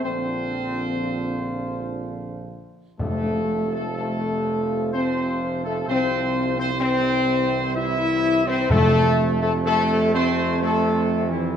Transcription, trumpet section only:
\new Staff \with { instrumentName = "Trumpet section" } { \time 3/4 \key f \major \tempo 4 = 62 c''2~ c''8 r8 | a'8. a'16 a'4 c''8. a'16 | c''8. c''16 c''4 e''8. c''16 | a'8. a'16 a'8 c''8 \tuplet 3/2 { a'4 e'8 } | }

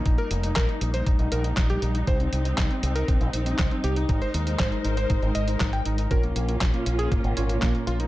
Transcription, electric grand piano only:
\new Staff \with { instrumentName = "Electric grand piano" } { \time 4/4 \key bes \dorian \tempo 4 = 119 ees'16 bes'16 ees'16 ees'16 bes'16 ees'16 ees'16 c''16 ees'16 ees'16 bes'16 ees'16 ees'16 g'16 ees'16 ees'16 | c''16 c'16 c'16 c'16 r16 c'16 c'16 bes'16 c'16 c'16 r16 c'16 c'16 c'16 g'16 ees'16 | ees'16 c''16 ees'16 ees'16 c''16 ees'16 ees'16 c''16 ees'16 ees'16 ees''16 ees'16 ees'16 g''16 ees'16 ees'16 | bes'16 bes16 bes16 bes16 r16 bes16 bes16 aes'16 bes16 bes16 r16 bes16 bes16 bes16 f'16 ees'16 | }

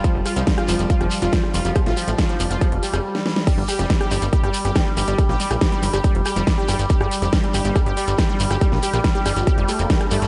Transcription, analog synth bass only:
\new Staff \with { instrumentName = "Analog synth bass" } { \clef bass \time 4/4 \key f \mixolydian \tempo 4 = 140 r16 f,,16 r16 c,16 r8 f,,16 f,,16 r16 f,,16 r16 f,,16 r8 f,,16 f,,16 | r16 a,,16 r16 a,,16 r8 f,,16 f,,16 r16 f,,16 r16 f,,16 r4 | r16 g,,16 r16 f,,16 r8 g,,16 g,,16 r16 g,,16 r16 g,,16 r8 g,,16 g,,16 | r16 bes,,16 r16 bes,,16 r8 g,,16 g,,16 r16 f,,16 r16 f,,16 r8 g,,16 g,,16 |
r16 g,,16 r16 f,,16 r8 g,,16 g,,16 r16 g,,16 r16 g,,16 r8 g,,16 g,,16 | r16 bes,,16 r16 bes,,16 r8 g,,16 g,,16 r16 f,,16 r16 f,,16 r8 g,,16 g,,16 | }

